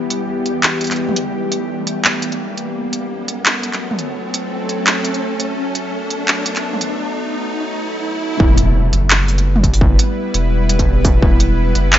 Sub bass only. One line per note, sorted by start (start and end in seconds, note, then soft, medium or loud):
0.00 0.27 E1 medium
0.28 1.33 E2 medium
1.34 1.86 B1 medium
1.87 2.56 B1 medium
2.57 2.74 E1 medium
2.75 3.09 F#1 medium
3.10 4.15 F#2 medium
4.16 4.68 C#2 medium
4.69 5.03 A1 loud
5.04 5.56 A1 loud
5.57 5.91 F#1 medium
5.92 6.97 F#2 loud
8.40 8.92 E1 loud
8.93 9.97 F#1 loud
10.34 11.21 E1 loud
11.22 11.74 E1 medium
11.75 11.99 F#1 loud